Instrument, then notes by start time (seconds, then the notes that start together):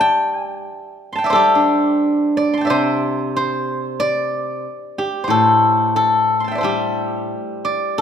guzheng
Already playing: G3 D5 E5 A5
0.01 G5
1.13 A5 C6
1.18 G5
1.24 D5 E5
1.30 A4 C5
1.35 G3 G4
1.55 D4
2.37 D5
2.54 A5 C6
2.61 E5 G5
2.67 C3 C5 D5
3.36 C5
4.00 D5
4.98 G4
5.24 A2 C5
5.30 A4
5.96 A4
6.40 C6
6.44 G5 A5
6.51 D5 E5
6.58 A4 C5
6.63 G3 G4
7.65 D5
7.98 A4